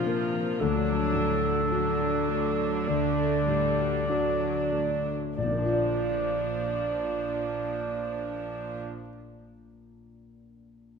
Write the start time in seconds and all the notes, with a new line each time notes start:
Already playing: A#2 C3 F3 D4 F4
0.05 A#3 A#4
0.35 F3
0.59 D2 D3 F#3 D4 A4
0.90 A3
1.14 A2 D4
1.44 F#4
1.69 F#3 D4 F#4 A4
2.01 F#4
2.29 A3 D4
2.59 A3
2.88 D2 D3 A3 D5
3.19 D4
3.47 A2 G3 A3
3.78 F#4
4.08 F#3 D4 F#4 A4
4.41 F#4
4.72 A3 D4
5.05 A3
5.36 A#1 A#2 F3 D4 D5
5.43 A#2 A#3
5.50 A#3 D4
5.57 D4 F4
5.65 F4 D5
5.73 D5